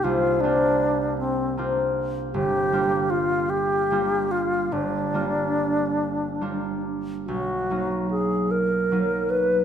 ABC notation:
X:1
M:6/8
L:1/8
Q:3/8=50
K:Gphr
V:1 name="Alto flute"
F D2 C z2 | G2 F G2 F | D4- D z | [K:B] F2 G A2 B |]
V:2 name="Harp"
[C,,B,DBd] [B,CDF]3 [B,CDF]2 | G,,, [G,B,DF]3 [G,B,DF]2 | G,,, [G,B,DF]3 [G,B,DF]2 | [K:B] B,,, [F,A,D]3 [F,A,D]2 |]